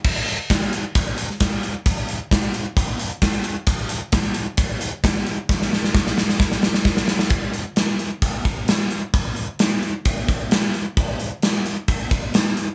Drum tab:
CC |x---------------|----------------|----------------|----------------|
HH |--x-xxx-x-x-x-x-|xxx-xxx-x-xxxxx-|x-x-xxx-x-x-x-x-|----------------|
SD |----o------oo---|----o-------o---|----o-------o---|oooooooooooooooo|
BD |o---o---o---o---|o---o---o---o---|o---o---o---o---|o---o---o---o---|

CC |----------------|----------------|----------------|
HH |x-x-x-x-x-x-x-x-|x-x-x-x-x-x-x-x-|x-x-x-x-x-x-x-x-|
SD |----o-------o---|----o-------o---|----o-------o---|
BD |o-------o-o-----|o-------o-o-----|o-------o-o-----|